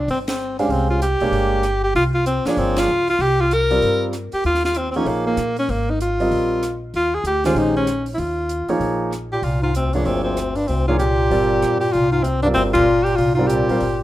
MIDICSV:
0, 0, Header, 1, 7, 480
1, 0, Start_track
1, 0, Key_signature, -3, "minor"
1, 0, Tempo, 312012
1, 1083, Time_signature, 4, 2, 24, 8
1, 21588, End_track
2, 0, Start_track
2, 0, Title_t, "Alto saxophone"
2, 0, Program_c, 0, 65
2, 165, Note_on_c, 0, 60, 78
2, 288, Note_off_c, 0, 60, 0
2, 438, Note_on_c, 0, 60, 76
2, 875, Note_off_c, 0, 60, 0
2, 913, Note_on_c, 0, 62, 75
2, 1101, Note_on_c, 0, 60, 81
2, 1124, Note_off_c, 0, 62, 0
2, 1376, Note_off_c, 0, 60, 0
2, 1385, Note_on_c, 0, 65, 75
2, 1553, Note_off_c, 0, 65, 0
2, 1568, Note_on_c, 0, 67, 89
2, 2758, Note_off_c, 0, 67, 0
2, 2822, Note_on_c, 0, 67, 85
2, 2992, Note_off_c, 0, 67, 0
2, 3012, Note_on_c, 0, 65, 91
2, 3142, Note_off_c, 0, 65, 0
2, 3301, Note_on_c, 0, 65, 80
2, 3471, Note_off_c, 0, 65, 0
2, 3484, Note_on_c, 0, 60, 85
2, 3789, Note_on_c, 0, 62, 78
2, 3812, Note_off_c, 0, 60, 0
2, 3980, Note_on_c, 0, 60, 86
2, 4003, Note_off_c, 0, 62, 0
2, 4291, Note_on_c, 0, 65, 90
2, 4314, Note_off_c, 0, 60, 0
2, 4753, Note_off_c, 0, 65, 0
2, 4762, Note_on_c, 0, 65, 88
2, 4949, Note_on_c, 0, 67, 92
2, 4972, Note_off_c, 0, 65, 0
2, 5242, Note_on_c, 0, 65, 82
2, 5265, Note_off_c, 0, 67, 0
2, 5436, Note_on_c, 0, 70, 94
2, 5459, Note_off_c, 0, 65, 0
2, 6243, Note_off_c, 0, 70, 0
2, 6671, Note_on_c, 0, 67, 79
2, 6836, Note_off_c, 0, 67, 0
2, 6863, Note_on_c, 0, 65, 85
2, 7126, Note_off_c, 0, 65, 0
2, 7155, Note_on_c, 0, 65, 79
2, 7347, Note_on_c, 0, 60, 79
2, 7370, Note_off_c, 0, 65, 0
2, 7546, Note_off_c, 0, 60, 0
2, 7555, Note_on_c, 0, 60, 57
2, 7634, Note_on_c, 0, 61, 72
2, 7657, Note_off_c, 0, 60, 0
2, 7768, Note_on_c, 0, 57, 56
2, 7791, Note_off_c, 0, 61, 0
2, 7806, Note_on_c, 0, 58, 78
2, 7829, Note_off_c, 0, 57, 0
2, 8098, Note_off_c, 0, 58, 0
2, 8106, Note_on_c, 0, 58, 82
2, 8547, Note_off_c, 0, 58, 0
2, 8597, Note_on_c, 0, 61, 80
2, 8774, Note_on_c, 0, 58, 81
2, 8797, Note_off_c, 0, 61, 0
2, 9080, Note_on_c, 0, 63, 70
2, 9103, Note_off_c, 0, 58, 0
2, 9246, Note_off_c, 0, 63, 0
2, 9255, Note_on_c, 0, 65, 86
2, 10441, Note_off_c, 0, 65, 0
2, 10710, Note_on_c, 0, 65, 89
2, 10993, Note_on_c, 0, 68, 76
2, 11016, Note_off_c, 0, 65, 0
2, 11169, Note_off_c, 0, 68, 0
2, 11177, Note_on_c, 0, 67, 86
2, 11444, Note_off_c, 0, 67, 0
2, 11474, Note_on_c, 0, 65, 75
2, 11660, Note_on_c, 0, 63, 79
2, 11683, Note_off_c, 0, 65, 0
2, 11945, Note_off_c, 0, 63, 0
2, 11952, Note_on_c, 0, 61, 79
2, 12391, Note_off_c, 0, 61, 0
2, 12526, Note_on_c, 0, 64, 54
2, 12600, Note_on_c, 0, 65, 78
2, 12623, Note_off_c, 0, 64, 0
2, 13641, Note_off_c, 0, 65, 0
2, 14344, Note_on_c, 0, 67, 75
2, 14525, Note_on_c, 0, 65, 77
2, 14548, Note_off_c, 0, 67, 0
2, 14809, Note_off_c, 0, 65, 0
2, 14818, Note_on_c, 0, 65, 72
2, 14989, Note_off_c, 0, 65, 0
2, 15017, Note_on_c, 0, 60, 73
2, 15288, Note_on_c, 0, 62, 70
2, 15311, Note_off_c, 0, 60, 0
2, 15478, Note_on_c, 0, 60, 73
2, 15502, Note_off_c, 0, 62, 0
2, 15734, Note_off_c, 0, 60, 0
2, 15744, Note_on_c, 0, 60, 76
2, 16247, Note_on_c, 0, 62, 74
2, 16270, Note_off_c, 0, 60, 0
2, 16428, Note_on_c, 0, 60, 78
2, 16451, Note_off_c, 0, 62, 0
2, 16720, Note_off_c, 0, 60, 0
2, 16730, Note_on_c, 0, 65, 76
2, 16900, Note_off_c, 0, 65, 0
2, 16909, Note_on_c, 0, 67, 87
2, 18110, Note_off_c, 0, 67, 0
2, 18159, Note_on_c, 0, 67, 85
2, 18346, Note_on_c, 0, 65, 90
2, 18369, Note_off_c, 0, 67, 0
2, 18638, Note_off_c, 0, 65, 0
2, 18648, Note_on_c, 0, 65, 80
2, 18782, Note_off_c, 0, 65, 0
2, 18818, Note_on_c, 0, 60, 86
2, 19106, Note_off_c, 0, 60, 0
2, 19115, Note_on_c, 0, 62, 78
2, 19204, Note_off_c, 0, 62, 0
2, 19295, Note_on_c, 0, 60, 85
2, 19434, Note_off_c, 0, 60, 0
2, 19587, Note_on_c, 0, 65, 88
2, 20059, Note_on_c, 0, 67, 88
2, 20082, Note_off_c, 0, 65, 0
2, 20245, Note_on_c, 0, 65, 93
2, 20268, Note_off_c, 0, 67, 0
2, 20524, Note_off_c, 0, 65, 0
2, 20533, Note_on_c, 0, 65, 81
2, 20726, Note_on_c, 0, 67, 89
2, 20749, Note_off_c, 0, 65, 0
2, 21571, Note_off_c, 0, 67, 0
2, 21588, End_track
3, 0, Start_track
3, 0, Title_t, "Grand piano"
3, 0, Program_c, 1, 0
3, 912, Note_on_c, 1, 61, 54
3, 913, Note_on_c, 1, 56, 61
3, 913, Note_on_c, 1, 67, 53
3, 914, Note_on_c, 1, 77, 65
3, 916, Note_on_c, 1, 72, 54
3, 1533, Note_off_c, 1, 56, 0
3, 1533, Note_off_c, 1, 61, 0
3, 1533, Note_off_c, 1, 67, 0
3, 1533, Note_off_c, 1, 77, 0
3, 1534, Note_off_c, 1, 72, 0
3, 1865, Note_on_c, 1, 62, 58
3, 1869, Note_on_c, 1, 56, 57
3, 1873, Note_on_c, 1, 58, 60
3, 1874, Note_on_c, 1, 73, 57
3, 1879, Note_on_c, 1, 79, 64
3, 2489, Note_off_c, 1, 62, 0
3, 2491, Note_off_c, 1, 56, 0
3, 2493, Note_off_c, 1, 58, 0
3, 2493, Note_off_c, 1, 73, 0
3, 2496, Note_off_c, 1, 79, 0
3, 3796, Note_on_c, 1, 62, 53
3, 3797, Note_on_c, 1, 58, 50
3, 3801, Note_on_c, 1, 53, 60
3, 3806, Note_on_c, 1, 68, 52
3, 3812, Note_on_c, 1, 73, 64
3, 4414, Note_off_c, 1, 62, 0
3, 4415, Note_off_c, 1, 58, 0
3, 4416, Note_off_c, 1, 53, 0
3, 4419, Note_off_c, 1, 68, 0
3, 4422, Note_off_c, 1, 73, 0
3, 5697, Note_on_c, 1, 55, 57
3, 5704, Note_on_c, 1, 60, 53
3, 5705, Note_on_c, 1, 65, 53
3, 5708, Note_on_c, 1, 70, 52
3, 5711, Note_on_c, 1, 74, 61
3, 6324, Note_off_c, 1, 55, 0
3, 6328, Note_off_c, 1, 60, 0
3, 6328, Note_off_c, 1, 65, 0
3, 6329, Note_off_c, 1, 70, 0
3, 6331, Note_off_c, 1, 74, 0
3, 7630, Note_on_c, 1, 63, 49
3, 7630, Note_on_c, 1, 68, 52
3, 7634, Note_on_c, 1, 53, 58
3, 7635, Note_on_c, 1, 58, 51
3, 7641, Note_on_c, 1, 73, 62
3, 8250, Note_off_c, 1, 63, 0
3, 8250, Note_off_c, 1, 68, 0
3, 8252, Note_off_c, 1, 53, 0
3, 8253, Note_off_c, 1, 58, 0
3, 8256, Note_off_c, 1, 73, 0
3, 9539, Note_on_c, 1, 55, 54
3, 9543, Note_on_c, 1, 60, 50
3, 9549, Note_on_c, 1, 65, 48
3, 9551, Note_on_c, 1, 70, 49
3, 9554, Note_on_c, 1, 75, 59
3, 10165, Note_off_c, 1, 55, 0
3, 10167, Note_off_c, 1, 60, 0
3, 10170, Note_off_c, 1, 65, 0
3, 10171, Note_off_c, 1, 70, 0
3, 10172, Note_off_c, 1, 75, 0
3, 11465, Note_on_c, 1, 56, 59
3, 11467, Note_on_c, 1, 51, 61
3, 11468, Note_on_c, 1, 61, 57
3, 11472, Note_on_c, 1, 67, 59
3, 11473, Note_on_c, 1, 72, 71
3, 12088, Note_off_c, 1, 56, 0
3, 12089, Note_off_c, 1, 51, 0
3, 12089, Note_off_c, 1, 61, 0
3, 12091, Note_off_c, 1, 67, 0
3, 12092, Note_off_c, 1, 72, 0
3, 13368, Note_on_c, 1, 63, 55
3, 13370, Note_on_c, 1, 58, 56
3, 13371, Note_on_c, 1, 53, 61
3, 13377, Note_on_c, 1, 68, 58
3, 13379, Note_on_c, 1, 73, 67
3, 14000, Note_off_c, 1, 63, 0
3, 14001, Note_off_c, 1, 53, 0
3, 14001, Note_off_c, 1, 58, 0
3, 14004, Note_off_c, 1, 68, 0
3, 14006, Note_off_c, 1, 73, 0
3, 15304, Note_on_c, 1, 53, 53
3, 15304, Note_on_c, 1, 58, 48
3, 15311, Note_on_c, 1, 62, 50
3, 15313, Note_on_c, 1, 68, 50
3, 15313, Note_on_c, 1, 73, 62
3, 15929, Note_off_c, 1, 53, 0
3, 15929, Note_off_c, 1, 58, 0
3, 15932, Note_off_c, 1, 62, 0
3, 15933, Note_off_c, 1, 68, 0
3, 15933, Note_off_c, 1, 73, 0
3, 16748, Note_on_c, 1, 53, 54
3, 16752, Note_on_c, 1, 73, 66
3, 16753, Note_on_c, 1, 58, 55
3, 16756, Note_on_c, 1, 62, 52
3, 16762, Note_on_c, 1, 68, 56
3, 16910, Note_off_c, 1, 53, 0
3, 16911, Note_off_c, 1, 73, 0
3, 16912, Note_off_c, 1, 58, 0
3, 16913, Note_off_c, 1, 62, 0
3, 16916, Note_off_c, 1, 68, 0
3, 17395, Note_on_c, 1, 55, 53
3, 17398, Note_on_c, 1, 60, 49
3, 17404, Note_on_c, 1, 65, 50
3, 17407, Note_on_c, 1, 74, 60
3, 17409, Note_on_c, 1, 70, 49
3, 18115, Note_off_c, 1, 55, 0
3, 18117, Note_off_c, 1, 60, 0
3, 18120, Note_off_c, 1, 65, 0
3, 18122, Note_off_c, 1, 70, 0
3, 18122, Note_off_c, 1, 74, 0
3, 19158, Note_on_c, 1, 55, 60
3, 19158, Note_on_c, 1, 60, 54
3, 19158, Note_on_c, 1, 70, 54
3, 19161, Note_on_c, 1, 65, 53
3, 19163, Note_on_c, 1, 74, 67
3, 19777, Note_off_c, 1, 55, 0
3, 19777, Note_off_c, 1, 60, 0
3, 19777, Note_off_c, 1, 70, 0
3, 19778, Note_off_c, 1, 65, 0
3, 19779, Note_off_c, 1, 74, 0
3, 20599, Note_on_c, 1, 60, 53
3, 20600, Note_on_c, 1, 55, 58
3, 20600, Note_on_c, 1, 65, 53
3, 20602, Note_on_c, 1, 74, 65
3, 20610, Note_on_c, 1, 70, 54
3, 21040, Note_off_c, 1, 55, 0
3, 21040, Note_off_c, 1, 60, 0
3, 21041, Note_off_c, 1, 65, 0
3, 21041, Note_off_c, 1, 74, 0
3, 21045, Note_off_c, 1, 70, 0
3, 21074, Note_on_c, 1, 65, 56
3, 21076, Note_on_c, 1, 60, 54
3, 21077, Note_on_c, 1, 55, 63
3, 21078, Note_on_c, 1, 70, 56
3, 21091, Note_on_c, 1, 72, 67
3, 21233, Note_off_c, 1, 65, 0
3, 21234, Note_off_c, 1, 60, 0
3, 21235, Note_off_c, 1, 55, 0
3, 21235, Note_off_c, 1, 70, 0
3, 21242, Note_off_c, 1, 72, 0
3, 21588, End_track
4, 0, Start_track
4, 0, Title_t, "Bass clarinet"
4, 0, Program_c, 2, 71
4, 14344, Note_on_c, 2, 46, 61
4, 14509, Note_off_c, 2, 46, 0
4, 14509, Note_on_c, 2, 46, 67
4, 14781, Note_off_c, 2, 46, 0
4, 14790, Note_on_c, 2, 44, 61
4, 14974, Note_off_c, 2, 44, 0
4, 14989, Note_on_c, 2, 38, 58
4, 15269, Note_on_c, 2, 43, 57
4, 15292, Note_off_c, 2, 38, 0
4, 15461, Note_on_c, 2, 38, 64
4, 15484, Note_off_c, 2, 43, 0
4, 15733, Note_off_c, 2, 38, 0
4, 15742, Note_on_c, 2, 38, 68
4, 16227, Note_on_c, 2, 43, 63
4, 16250, Note_off_c, 2, 38, 0
4, 16427, Note_on_c, 2, 38, 67
4, 16450, Note_off_c, 2, 43, 0
4, 16723, Note_off_c, 2, 38, 0
4, 16732, Note_on_c, 2, 44, 66
4, 16894, Note_off_c, 2, 44, 0
4, 16903, Note_on_c, 2, 46, 75
4, 18107, Note_off_c, 2, 46, 0
4, 18139, Note_on_c, 2, 46, 71
4, 18324, Note_off_c, 2, 46, 0
4, 18324, Note_on_c, 2, 46, 73
4, 18606, Note_off_c, 2, 46, 0
4, 18615, Note_on_c, 2, 44, 69
4, 18814, Note_on_c, 2, 38, 68
4, 18837, Note_off_c, 2, 44, 0
4, 18845, Note_off_c, 2, 38, 0
4, 19114, Note_on_c, 2, 43, 64
4, 19202, Note_off_c, 2, 43, 0
4, 19281, Note_on_c, 2, 38, 70
4, 19423, Note_off_c, 2, 38, 0
4, 19584, Note_on_c, 2, 46, 76
4, 20050, Note_off_c, 2, 46, 0
4, 20050, Note_on_c, 2, 46, 70
4, 20257, Note_off_c, 2, 46, 0
4, 20257, Note_on_c, 2, 46, 73
4, 20533, Note_off_c, 2, 46, 0
4, 20542, Note_on_c, 2, 44, 72
4, 20732, Note_on_c, 2, 46, 77
4, 20755, Note_off_c, 2, 44, 0
4, 21574, Note_off_c, 2, 46, 0
4, 21588, End_track
5, 0, Start_track
5, 0, Title_t, "Upright bass"
5, 0, Program_c, 3, 32
5, 122, Note_on_c, 3, 31, 76
5, 1034, Note_off_c, 3, 31, 0
5, 1063, Note_on_c, 3, 36, 74
5, 1793, Note_off_c, 3, 36, 0
5, 1863, Note_on_c, 3, 34, 61
5, 2010, Note_off_c, 3, 34, 0
5, 2019, Note_on_c, 3, 31, 78
5, 2942, Note_off_c, 3, 31, 0
5, 2997, Note_on_c, 3, 36, 80
5, 3720, Note_off_c, 3, 36, 0
5, 3953, Note_on_c, 3, 31, 81
5, 4403, Note_off_c, 3, 31, 0
5, 4436, Note_on_c, 3, 37, 69
5, 4884, Note_off_c, 3, 37, 0
5, 4905, Note_on_c, 3, 36, 75
5, 5824, Note_off_c, 3, 36, 0
5, 5879, Note_on_c, 3, 43, 75
5, 6600, Note_off_c, 3, 43, 0
5, 6838, Note_on_c, 3, 39, 75
5, 7750, Note_off_c, 3, 39, 0
5, 7768, Note_on_c, 3, 34, 74
5, 8229, Note_off_c, 3, 34, 0
5, 8262, Note_on_c, 3, 46, 64
5, 8716, Note_off_c, 3, 46, 0
5, 8748, Note_on_c, 3, 32, 77
5, 9665, Note_off_c, 3, 32, 0
5, 9704, Note_on_c, 3, 34, 75
5, 10623, Note_off_c, 3, 34, 0
5, 10672, Note_on_c, 3, 39, 75
5, 11122, Note_off_c, 3, 39, 0
5, 11133, Note_on_c, 3, 38, 69
5, 11592, Note_off_c, 3, 38, 0
5, 11606, Note_on_c, 3, 34, 78
5, 12534, Note_off_c, 3, 34, 0
5, 12584, Note_on_c, 3, 39, 76
5, 13313, Note_off_c, 3, 39, 0
5, 13531, Note_on_c, 3, 34, 74
5, 14458, Note_off_c, 3, 34, 0
5, 14495, Note_on_c, 3, 36, 73
5, 15420, Note_off_c, 3, 36, 0
5, 15472, Note_on_c, 3, 31, 79
5, 16389, Note_off_c, 3, 31, 0
5, 16449, Note_on_c, 3, 36, 76
5, 17359, Note_off_c, 3, 36, 0
5, 17392, Note_on_c, 3, 31, 77
5, 17844, Note_off_c, 3, 31, 0
5, 17897, Note_on_c, 3, 43, 67
5, 18337, Note_off_c, 3, 43, 0
5, 18380, Note_on_c, 3, 36, 80
5, 19285, Note_off_c, 3, 36, 0
5, 19311, Note_on_c, 3, 31, 79
5, 20230, Note_off_c, 3, 31, 0
5, 20284, Note_on_c, 3, 36, 74
5, 21005, Note_off_c, 3, 36, 0
5, 21241, Note_on_c, 3, 31, 74
5, 21588, Note_off_c, 3, 31, 0
5, 21588, End_track
6, 0, Start_track
6, 0, Title_t, "Muted upright bass strokes"
6, 3768, Note_on_c, 9, 29, 36
6, 3922, Note_off_c, 9, 29, 0
6, 6660, Note_on_c, 9, 29, 33
6, 6814, Note_off_c, 9, 29, 0
6, 13357, Note_on_c, 9, 29, 36
6, 13511, Note_off_c, 9, 29, 0
6, 21061, Note_on_c, 9, 29, 34
6, 21215, Note_off_c, 9, 29, 0
6, 21588, End_track
7, 0, Start_track
7, 0, Title_t, "Drums"
7, 128, Note_on_c, 9, 46, 37
7, 282, Note_off_c, 9, 46, 0
7, 424, Note_on_c, 9, 51, 59
7, 432, Note_on_c, 9, 38, 68
7, 578, Note_off_c, 9, 51, 0
7, 585, Note_off_c, 9, 38, 0
7, 908, Note_on_c, 9, 46, 34
7, 1062, Note_off_c, 9, 46, 0
7, 1081, Note_on_c, 9, 46, 40
7, 1235, Note_off_c, 9, 46, 0
7, 1565, Note_on_c, 9, 42, 51
7, 1719, Note_off_c, 9, 42, 0
7, 1851, Note_on_c, 9, 46, 35
7, 2005, Note_off_c, 9, 46, 0
7, 2041, Note_on_c, 9, 46, 39
7, 2194, Note_off_c, 9, 46, 0
7, 2511, Note_on_c, 9, 42, 48
7, 2519, Note_on_c, 9, 37, 52
7, 2665, Note_off_c, 9, 42, 0
7, 2673, Note_off_c, 9, 37, 0
7, 3007, Note_on_c, 9, 46, 41
7, 3161, Note_off_c, 9, 46, 0
7, 3477, Note_on_c, 9, 42, 49
7, 3631, Note_off_c, 9, 42, 0
7, 3772, Note_on_c, 9, 46, 34
7, 3780, Note_on_c, 9, 38, 46
7, 3926, Note_off_c, 9, 46, 0
7, 3933, Note_off_c, 9, 38, 0
7, 3959, Note_on_c, 9, 46, 38
7, 4113, Note_off_c, 9, 46, 0
7, 4253, Note_on_c, 9, 51, 58
7, 4261, Note_on_c, 9, 38, 68
7, 4407, Note_off_c, 9, 51, 0
7, 4414, Note_off_c, 9, 38, 0
7, 4733, Note_on_c, 9, 46, 35
7, 4887, Note_off_c, 9, 46, 0
7, 4921, Note_on_c, 9, 46, 37
7, 5075, Note_off_c, 9, 46, 0
7, 5401, Note_on_c, 9, 42, 47
7, 5555, Note_off_c, 9, 42, 0
7, 5703, Note_on_c, 9, 46, 34
7, 5857, Note_off_c, 9, 46, 0
7, 5879, Note_on_c, 9, 46, 38
7, 6033, Note_off_c, 9, 46, 0
7, 6353, Note_on_c, 9, 42, 45
7, 6360, Note_on_c, 9, 37, 53
7, 6506, Note_off_c, 9, 42, 0
7, 6514, Note_off_c, 9, 37, 0
7, 6646, Note_on_c, 9, 46, 35
7, 6800, Note_off_c, 9, 46, 0
7, 6827, Note_on_c, 9, 46, 38
7, 6981, Note_off_c, 9, 46, 0
7, 6996, Note_on_c, 9, 38, 26
7, 7148, Note_off_c, 9, 38, 0
7, 7148, Note_on_c, 9, 38, 37
7, 7298, Note_on_c, 9, 42, 49
7, 7302, Note_off_c, 9, 38, 0
7, 7451, Note_off_c, 9, 42, 0
7, 7598, Note_on_c, 9, 46, 33
7, 7752, Note_off_c, 9, 46, 0
7, 7787, Note_on_c, 9, 46, 39
7, 7941, Note_off_c, 9, 46, 0
7, 8263, Note_on_c, 9, 42, 47
7, 8271, Note_on_c, 9, 37, 54
7, 8417, Note_off_c, 9, 42, 0
7, 8425, Note_off_c, 9, 37, 0
7, 8562, Note_on_c, 9, 46, 36
7, 8715, Note_off_c, 9, 46, 0
7, 8750, Note_on_c, 9, 46, 37
7, 8904, Note_off_c, 9, 46, 0
7, 9239, Note_on_c, 9, 42, 48
7, 9393, Note_off_c, 9, 42, 0
7, 9538, Note_on_c, 9, 46, 34
7, 9692, Note_off_c, 9, 46, 0
7, 9717, Note_on_c, 9, 46, 39
7, 9871, Note_off_c, 9, 46, 0
7, 10194, Note_on_c, 9, 42, 50
7, 10202, Note_on_c, 9, 37, 55
7, 10348, Note_off_c, 9, 42, 0
7, 10356, Note_off_c, 9, 37, 0
7, 10674, Note_on_c, 9, 46, 38
7, 10827, Note_off_c, 9, 46, 0
7, 11148, Note_on_c, 9, 42, 52
7, 11301, Note_off_c, 9, 42, 0
7, 11444, Note_on_c, 9, 46, 35
7, 11452, Note_on_c, 9, 38, 37
7, 11598, Note_off_c, 9, 46, 0
7, 11606, Note_off_c, 9, 38, 0
7, 11635, Note_on_c, 9, 46, 40
7, 11789, Note_off_c, 9, 46, 0
7, 12108, Note_on_c, 9, 42, 46
7, 12115, Note_on_c, 9, 37, 54
7, 12262, Note_off_c, 9, 42, 0
7, 12269, Note_off_c, 9, 37, 0
7, 12400, Note_on_c, 9, 46, 37
7, 12553, Note_off_c, 9, 46, 0
7, 12584, Note_on_c, 9, 46, 40
7, 12738, Note_off_c, 9, 46, 0
7, 13066, Note_on_c, 9, 42, 51
7, 13220, Note_off_c, 9, 42, 0
7, 13361, Note_on_c, 9, 46, 35
7, 13515, Note_off_c, 9, 46, 0
7, 13548, Note_on_c, 9, 46, 38
7, 13702, Note_off_c, 9, 46, 0
7, 14038, Note_on_c, 9, 42, 46
7, 14046, Note_on_c, 9, 37, 53
7, 14192, Note_off_c, 9, 42, 0
7, 14199, Note_off_c, 9, 37, 0
7, 14504, Note_on_c, 9, 46, 39
7, 14658, Note_off_c, 9, 46, 0
7, 14993, Note_on_c, 9, 42, 50
7, 15147, Note_off_c, 9, 42, 0
7, 15279, Note_on_c, 9, 46, 35
7, 15432, Note_off_c, 9, 46, 0
7, 15468, Note_on_c, 9, 46, 38
7, 15622, Note_off_c, 9, 46, 0
7, 15951, Note_on_c, 9, 42, 49
7, 15959, Note_on_c, 9, 37, 57
7, 16105, Note_off_c, 9, 42, 0
7, 16113, Note_off_c, 9, 37, 0
7, 16237, Note_on_c, 9, 46, 35
7, 16391, Note_off_c, 9, 46, 0
7, 16429, Note_on_c, 9, 46, 38
7, 16583, Note_off_c, 9, 46, 0
7, 16915, Note_on_c, 9, 42, 49
7, 17068, Note_off_c, 9, 42, 0
7, 17404, Note_on_c, 9, 46, 42
7, 17558, Note_off_c, 9, 46, 0
7, 17881, Note_on_c, 9, 42, 46
7, 17888, Note_on_c, 9, 37, 56
7, 18034, Note_off_c, 9, 42, 0
7, 18042, Note_off_c, 9, 37, 0
7, 18172, Note_on_c, 9, 46, 35
7, 18326, Note_off_c, 9, 46, 0
7, 18359, Note_on_c, 9, 46, 40
7, 18513, Note_off_c, 9, 46, 0
7, 18835, Note_on_c, 9, 42, 48
7, 18989, Note_off_c, 9, 42, 0
7, 19315, Note_on_c, 9, 46, 39
7, 19468, Note_off_c, 9, 46, 0
7, 19611, Note_on_c, 9, 51, 60
7, 19619, Note_on_c, 9, 36, 71
7, 19765, Note_off_c, 9, 51, 0
7, 19773, Note_off_c, 9, 36, 0
7, 20095, Note_on_c, 9, 46, 34
7, 20249, Note_off_c, 9, 46, 0
7, 20280, Note_on_c, 9, 46, 39
7, 20433, Note_off_c, 9, 46, 0
7, 20762, Note_on_c, 9, 42, 50
7, 20915, Note_off_c, 9, 42, 0
7, 21064, Note_on_c, 9, 46, 36
7, 21218, Note_off_c, 9, 46, 0
7, 21237, Note_on_c, 9, 46, 39
7, 21391, Note_off_c, 9, 46, 0
7, 21588, End_track
0, 0, End_of_file